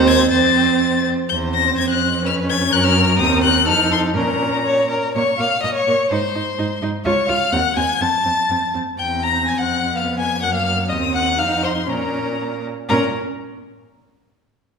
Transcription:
Already playing: D#2 C4 C5
0.07 G#6
0.30 F2 C4 C5 A6
1.29 E2 C4 C5 G6
1.54 A#6
1.78 F2 G#6
1.90 F#6
2.24 C#4 B4 F6
2.49 G#6
2.72 F#2 A#4 F#6
2.84 F6
3.19 D#2 C4 D#6
3.44 F#6
3.67 F2 D#4 A4 F6
3.92 C6
4.15 A#2 C#4 A#4 A#5
4.65 C#5
4.90 A#4
5.14 A#2 A#3 C#5 C#6
5.39 A#2 A#3 F5 F6
5.63 A#2 A#3 D#5 D#6
5.74 C#5 C#6
5.87 A#2 A#3
6.10 G#2 D#4 C5 C6
6.35 G#2 D#4
6.58 G#2 D#4
6.82 G#2 D#4
7.05 C#2 F4 C#5 C#6
7.28 C#2 F4 F5 F6
7.52 D#2 C4 F#5 F#6
7.76 D#2 C4 G#5 G#6
8.00 F2 C4 A5 A6
8.25 F2 C4
8.50 F2 C4
8.74 F2 C4
8.99 E2 C4 G5 G6
9.23 A#5 A#6
9.46 F2 G#5 G#6
9.58 F#5 F#6
9.95 B3 F5 F6
10.19 G#5 G#6
10.42 F#2 A#3 F#5 F#6
10.54 F5 F6
10.89 D#2 C4 D#5 D#6
11.14 F#5 F#6
11.39 F2 D#4 F5 F6
11.64 C5 C6
11.88 A#2 C#4 A#4 A#5
12.89 A#2 C#4 A#4 A#5

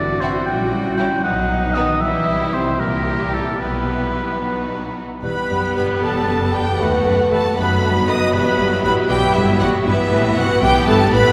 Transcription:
Already playing: A1 D3 C4 E4 F#4 D5
0.21 C3 C4 E4 F#4 C5
0.46 A#1 G3 C#4 E4 G5
0.97 G3 C#4 E4 G5
1.23 B1 F#3 B3 D#4 F#5
1.74 D#3 B3 D#4 F#4 D#5
2.01 C2 E3 G3 E4 G4 E5
2.53 C3 C5
2.79 A#2 G3 E4 G4 A#4
3.33 A2 A4
3.60 B1 B2 G3 B3 E4 G4 B4
4.42 F#3 B3 D#4 F#4
5.23 E1 E2 G3 B3 G4 B4 B5
5.50 F#1 F#2 G3 B4
5.76 G1 G2 G3 B4 B5
6.02 E1 E2 G3 B3 A4 B4 A5
6.28 F#1 F#2 G3 B4
6.53 E1 E2 G3 G4 B4 G5
6.79 D#2 A3 B3 F#4 B4 F#5
7.05 F#1 F#2 A3 B4
7.31 E1 E2 A3 A4 B4 A5
7.56 F#1 F#2 F#3 A3 B3 D#4 F#4 B4 B5
7.82 G1 G2 A3 B4
8.08 F#1 F#2 A3 B4 D#5 D#6
8.33 E1 E2 G3 E4 G4 B4 B5
8.59 G1 G2 G3 B4
8.84 A1 A2 G3 B4 B5
9.09 B1 B2 G3 B3 G4 B4 G5
9.34 G1 G2 G3 E4 B4 E5
9.60 A1 A2 G3 F#4 B4 F#5
9.85 G1 G2 E3 B3 E4 B4 E5
10.11 A1 A2 E3 B4
10.36 C2 C3 E3 F#4 B4 F#5
10.62 B1 B2 E3 B3 G4 B4 G5
10.87 G1 G2 E3 A4 B4 A5
11.12 A1 A2 E3 B4 B5

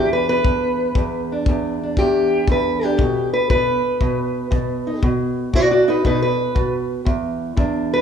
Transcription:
Already playing: E2 G4
0.13 B4
0.29 B3 B4
0.45 E2, kick
0.95 E2, kick
1.32 D4
1.46 E2, kick
1.83 D4
1.97 E2 G4, kick
2.48 E2, kick
2.52 B4
2.84 D4 G4
2.99 B2, kick
3.33 B4
3.50 B2 B4, kick
4.01 B2, kick
4.51 B2, kick
4.87 D#4
5.03 B2, kick
5.53 B2 F#4 D5, kick
5.71 F#4 D5
5.88 D#4 B4
6.05 B2 D#4 B4, kick
6.22 B4
6.55 B2, kick
7.05 E2, kick
7.56 E2 D4, kick
7.94 B4

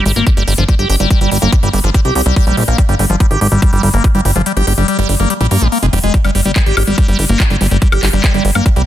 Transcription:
0.06 G#1 G3, open hi-hat
0.16 G#1 A#3, closed hi-hat
0.27 G3, kick, closed hi-hat
0.37 G1 G3, closed hi-hat
0.48 G1 G3, open hi-hat
0.58 G1 F3, closed hi-hat
0.69 G3, kick, closed hi-hat
0.79 G1 G4, closed hi-hat
0.90 G1 G4, open hi-hat
1.00 G1 G3, closed hi-hat
1.10 G3, kick, closed hi-hat
1.21 G1 G3, closed hi-hat
1.31 G1 G3, open hi-hat
1.42 G1 A#3, closed hi-hat
1.52 G3, kick, closed hi-hat
1.63 G1 G3, closed hi-hat
1.73 G1 G3, open hi-hat
1.84 G1 F3, closed hi-hat
1.94 G3, kick, closed hi-hat
2.05 C2 G4, closed hi-hat
2.15 C2 G4, open hi-hat
2.26 C2 G3, closed hi-hat
2.36 G3, kick, open hi-hat
2.47 A#1 G3, closed hi-hat
2.57 A#1 G3, open hi-hat
2.68 A#1 A#3, closed hi-hat
2.78 G3, kick, closed hi-hat
2.89 G1 G3, closed hi-hat
2.99 G1 G3, open hi-hat
3.10 G1 F3, closed hi-hat
3.20 G3, kick, closed hi-hat
3.31 G#1 G4, closed hi-hat
3.41 G#1 G4, open hi-hat
3.52 G#1 G3, closed hi-hat
3.62 G3, kick, closed hi-hat
3.73 G1 G3, closed hi-hat
3.83 G1 G3, open hi-hat
3.94 G1 A#3, closed hi-hat
4.04 G3, kick, closed hi-hat
4.15 G1 G3, closed hi-hat
4.25 G1 G3, open hi-hat
4.36 G1 F3, closed hi-hat
4.46 G3, closed hi-hat
4.57 G1 G4, closed hi-hat
4.67 G1 G4, open hi-hat
4.78 G1 G3, closed hi-hat
4.88 G3, closed hi-hat
4.99 G1 G3, closed hi-hat
5.09 G1 G3, open hi-hat
5.20 G1 A#3, closed hi-hat
5.30 G3, closed hi-hat
5.41 A#1 G3, closed hi-hat
5.51 G2 A#3, open hi-hat
5.62 A#1 G3, closed hi-hat
5.72 A#3, open hi-hat
5.83 F1 G#3, closed hi-hat
5.93 F1 G3, open hi-hat
6.03 F1 G#3, closed hi-hat
6.14 kick, closed hi-hat
6.24 G1 G3, closed hi-hat, high woodblock
6.35 G1 G3, open hi-hat
6.45 G1 G3, closed hi-hat
6.56 G3, kick, clap, closed hi-hat
6.66 G#1 G4, closed hi-hat
6.77 G#1 G4, open hi-hat, high woodblock
6.87 G#1 G3, closed hi-hat
6.98 G3, kick, closed hi-hat
7.08 G1 G3, closed hi-hat
7.19 G1 G3, open hi-hat
7.29 G1 A#3, closed hi-hat
7.40 G3, kick, clap, closed hi-hat, high woodblock
7.50 G1 G3, closed hi-hat
7.61 G1 G3, open hi-hat
7.71 G1 G3, closed hi-hat
7.82 G3, kick, closed hi-hat
7.92 G1 G4, closed hi-hat, high woodblock
8.03 G1 G4, clap, open hi-hat
8.13 G1 G3, closed hi-hat
8.24 G3, kick, clap, closed hi-hat
8.34 G1 G3, closed hi-hat
8.45 G1 G3, open hi-hat
8.55 G1 A#3, closed hi-hat, high woodblock
8.66 G3, kick, closed hi-hat
8.76 C2 G3, closed hi-hat

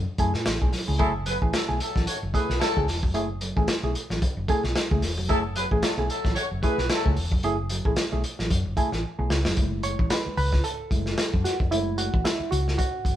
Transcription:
0.18 F#2 A3 E4 G#4, kick, closed hi-hat
0.34 A2, snare
0.46 A1, snare, closed hi-hat
0.61 B1 A3 E4 G#4, kick
0.73 F#3, snare, open hi-hat
0.87 C#2 A3 E4 G#4
0.99 F#1 F#3 A3 E4 G#4 A4, kick, closed hi-hat
1.26 F#3 B3 G#4 B4, closed hi-hat
1.41 A1 A3 E4 G#4, kick
1.53 F#3 E4 A4, snare, closed hi-hat
1.68 B1 A3 E4 G#4
1.80 F#3 E4 A4, closed hi-hat
1.96 A1 F#3, kick, snare
2.07 A3 F#4 C#5, closed hi-hat
2.23 F#1
2.34 A3 B3 E4 G#4 B4, kick, closed hi-hat
2.49 B1, snare
2.60 F#3 E4 A4, snare, closed hi-hat
2.76 C#2 A3 E4 G#4, kick
2.88 E1, snare, open hi-hat
3.03 F1 F#3, kick
3.14 F#1 A3 E4 G#4, closed hi-hat
3.41 F#3, closed hi-hat
3.56 A1 A3 E4 G#4, kick
3.68 snare, closed hi-hat
3.83 B1 A3 E4 G#4
3.95 closed hi-hat
4.10 A1 F#3, snare
4.22 kick, closed hi-hat
4.37 F#1
4.48 A3 E4 G#4, kick, closed hi-hat
4.63 B1, snare
4.75 snare, closed hi-hat
4.91 C#2 A3 E4 G#4, kick
5.02 E1, snare, open hi-hat
5.17 F1 F#3
5.29 F#1 F#3 A3 E4 G#4 A4, kick, closed hi-hat
5.55 F#3 B3 G#4 B4, closed hi-hat
5.71 A1 A3 E4 G#4, kick
5.82 F#3 E4 A4, snare, closed hi-hat
5.97 B1 A3 E4 G#4
6.09 F#3 E4 A4, closed hi-hat
6.25 A1 F#3, kick, snare
6.36 A3 F#4 C#5, closed hi-hat
6.51 F#1
6.63 A3 B3 E4 G#4 B4, kick, closed hi-hat
6.78 B1, snare
6.89 F#3 E4 A4, snare, closed hi-hat
7.05 C#2 A3 E4 G#4, kick
7.16 E1, open hi-hat
7.32 F1 F#3, kick
7.43 F#1 A3 E4 G#4, closed hi-hat
7.70 F#3, closed hi-hat
7.85 A1 A3 E4 G#4, kick
7.96 snare, closed hi-hat
8.12 B1 A3 E4 G#4
8.24 closed hi-hat
8.39 A1 F#3, snare
8.51 F#2, kick, closed hi-hat
8.65 F#1
8.77 A3 E4 G#4, kick, closed hi-hat
8.92 A1, snare
9.18 B1 A3 E4 G#4
9.30 C#2, snare
9.45 F1 F#3, snare
9.56 F#1 G#3 A3 E4, kick, closed hi-hat
9.83 C#5, closed hi-hat
9.99 A1, kick
10.10 B4, snare, closed hi-hat
10.26 muted fingered electric bass stroke
10.37 C#2 B4, open hi-hat
10.52 kick, snare
10.64 A4, closed hi-hat
10.91 F#1 G#3 A3 E4, kick, closed hi-hat
11.06 snare
11.18 snare, closed hi-hat
11.34 F#2, kick
11.44 F#4, snare, closed hi-hat
11.60 F1, kick
11.71 F#1 G#3 A3 E4, closed hi-hat
11.98 F#4, closed hi-hat
12.14 A1, kick
12.25 E4, snare, closed hi-hat
12.40 muted fingered electric bass stroke
12.51 C#2 F#4, closed hi-hat
12.68 snare
12.78 F#4, kick, closed hi-hat
13.05 F#1, kick, closed hi-hat

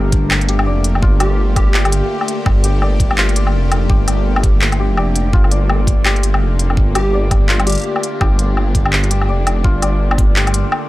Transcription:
Already playing: G1 D3 A3 A#3 F4 G4 A#4 D5
0.12 kick, closed hi-hat
0.31 clap, low woodblock
0.41 closed hi-hat
0.49 G4, closed hi-hat
0.59 low woodblock
0.66 F1 D5
0.84 closed hi-hat
0.95 low woodblock
1.02 G1 F4, kick
1.20 G4 D5, closed hi-hat, low woodblock
1.56 G4, kick, closed hi-hat, low woodblock
1.74 G4, clap
1.85 closed hi-hat, low woodblock
1.92 closed hi-hat
2.21 low woodblock
2.28 closed hi-hat
2.46 G1, kick, low woodblock
2.64 G4, closed hi-hat
2.82 D5, low woodblock
3.00 kick, closed hi-hat
3.11 low woodblock
3.18 F4, clap
3.29 closed hi-hat
3.36 D5, closed hi-hat
3.47 low woodblock
3.54 F1
3.72 closed hi-hat, low woodblock
3.89 G1 G4, kick
4.08 closed hi-hat, low woodblock
4.36 low woodblock
4.43 kick, closed hi-hat
4.61 clap
4.72 closed hi-hat, low woodblock
4.80 G4
4.90 F1
4.97 D5, low woodblock
5.16 closed hi-hat
5.33 G1 D4 F4, kick
5.44 low woodblock
5.51 D5, closed hi-hat
5.70 low woodblock
5.87 kick, closed hi-hat
6.05 G4, clap, low woodblock
6.16 closed hi-hat
6.23 closed hi-hat
6.34 low woodblock
6.41 F1
6.59 closed hi-hat
6.70 low woodblock
6.77 G1, kick
6.95 G4, closed hi-hat, low woodblock
7.13 D5
7.31 kick, closed hi-hat, low woodblock
7.49 F4, clap
7.60 closed hi-hat, low woodblock
7.66 G4 D5, closed hi-hat
7.70 closed hi-hat
7.72 closed hi-hat
7.75 closed hi-hat
7.78 closed hi-hat
7.80 closed hi-hat
7.82 closed hi-hat
7.83 closed hi-hat
7.96 low woodblock
8.03 closed hi-hat
8.21 G1 G4, kick, low woodblock
8.39 closed hi-hat
8.57 low woodblock
8.75 kick, closed hi-hat
8.86 low woodblock
8.93 clap
9.04 closed hi-hat
9.10 G4, closed hi-hat
9.22 low woodblock
9.28 F1 D5
9.47 closed hi-hat, low woodblock
9.64 G1 F4, kick
9.82 D5, closed hi-hat, low woodblock
10.11 low woodblock
10.18 kick, closed hi-hat
10.36 G4, clap
10.47 closed hi-hat, low woodblock
10.54 closed hi-hat
10.72 low woodblock

